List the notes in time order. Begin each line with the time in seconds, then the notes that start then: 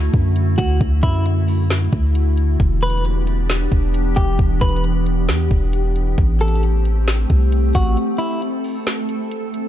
Already playing: D3 A3 E4 F#4
0.13 F#2, kick, closed hi-hat
0.36 closed hi-hat
0.58 D2 F#4, kick, closed hi-hat
0.81 D2, kick, closed hi-hat
1.03 F#2 E4, kick, closed hi-hat
1.14 closed hi-hat
1.26 closed hi-hat
1.48 open hi-hat
1.70 snare, closed hi-hat
1.92 D2, kick, closed hi-hat
2.15 closed hi-hat
2.37 closed hi-hat
2.60 E1 E3 B3 D4 G4, kick, closed hi-hat
2.82 B4, closed hi-hat
2.90 closed hi-hat
2.97 closed hi-hat
3.05 closed hi-hat
3.27 closed hi-hat
3.50 snare, closed hi-hat
3.72 E1, kick, closed hi-hat
3.94 closed hi-hat
4.16 E1 G4, kick, closed hi-hat
4.39 E1, kick, closed hi-hat
4.61 E1 B4, kick, closed hi-hat
4.69 closed hi-hat
4.76 closed hi-hat
4.84 closed hi-hat
5.06 closed hi-hat
5.29 E2, snare, closed hi-hat
5.51 E1, kick, closed hi-hat
5.73 closed hi-hat
5.96 closed hi-hat
6.18 A1 A3 C4, kick, closed hi-hat
6.41 A4, closed hi-hat
6.48 closed hi-hat
6.56 closed hi-hat
6.63 closed hi-hat
6.85 closed hi-hat
7.08 snare, closed hi-hat
7.30 C2, kick, closed hi-hat
7.52 closed hi-hat
7.75 A1 F#4, kick, closed hi-hat
7.97 A4, closed hi-hat
8.18 E4, closed hi-hat
8.31 closed hi-hat
8.42 closed hi-hat
8.64 open hi-hat
8.87 snare, closed hi-hat
9.09 closed hi-hat
9.32 closed hi-hat
9.54 closed hi-hat